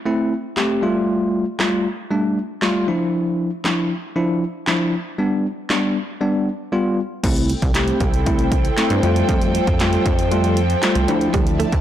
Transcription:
0.06 A3 C4 E4
0.57 A3 C4 G4, snare, clap
0.82 G3 A3 F4
1.59 G3 A3 F4, snare, clap
2.11 G3 A3 D4
2.62 G3 A3 F4, snare, clap
2.88 F3 D4 E4
3.64 F3 D4 E4, snare, clap
4.16 F3 D4 E4
4.67 F3 D4 E4, snare, clap
5.18 G3 B3 D4
5.70 G3 B3 D4, snare, clap
6.21 G3 B3 D4
6.72 G3 B3 F4
7.23 C2 A3 C4 E4 A4 C5 G5, kick, closed hi-hat, crash
7.36 closed hi-hat
7.50 closed hi-hat
7.62 C2, kick, closed hi-hat
7.75 A3 C4 G4, snare, clap, closed hi-hat
7.88 closed hi-hat
8.01 C2, kick, closed hi-hat
8.14 closed hi-hat
8.26 A3 C4 E4, kick, closed hi-hat
8.39 closed hi-hat
8.52 kick, closed hi-hat
8.65 closed hi-hat
8.77 A3 C4 E4, snare, clap, closed hi-hat
8.90 G2, closed hi-hat
9.03 F2 F3 G3 A3 F4, closed hi-hat
9.16 closed hi-hat
9.29 F2, kick, closed hi-hat
9.42 closed hi-hat
9.55 closed hi-hat
9.67 F2, kick, closed hi-hat
9.80 G3 A3 F4, snare, clap, closed hi-hat
9.93 closed hi-hat
10.06 F2, kick, closed hi-hat
10.19 closed hi-hat
10.31 G3 A3 F4, closed hi-hat
10.44 closed hi-hat
10.57 closed hi-hat
10.70 closed hi-hat
10.82 G3 A3 F4, snare, clap, closed hi-hat
10.95 C2, closed hi-hat
11.08 D2 F3 D4 E4 D5 E5 A5, closed hi-hat
11.21 closed hi-hat
11.34 D2 G3, kick, closed hi-hat
11.47 closed hi-hat
11.60 A3, closed hi-hat
11.72 D2, muted clean electric guitar stroke, kick, closed hi-hat

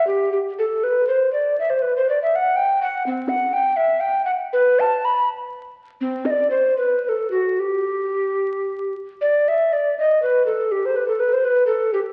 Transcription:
0.07 G4
0.32 G4
0.59 A4
0.83 B4
1.08 C5
1.33 D5
1.59 E5
1.70 C5
1.82 B4
1.96 C5
2.09 D5
2.22 E5
2.35 F#5
2.56 G5
2.81 F#5
3.06 C4
3.28 F#5
3.53 G5
3.76 E5
4.00 G5
4.25 F#5
4.53 B4
4.80 A5
5.05 B5
6.01 C4
6.25 D#5
6.30 D5
6.50 C5
6.78 B4
7.04 B4
7.09 A4
7.31 F#4
7.59 G4
9.21 D5
9.48 E5
9.73 D5
9.99 D#5
10.22 B4
10.46 A4
10.71 G4
10.85 C5
10.96 B4
11.08 A4
11.20 B4
11.33 C5
11.44 B4
11.66 A4
11.93 G4

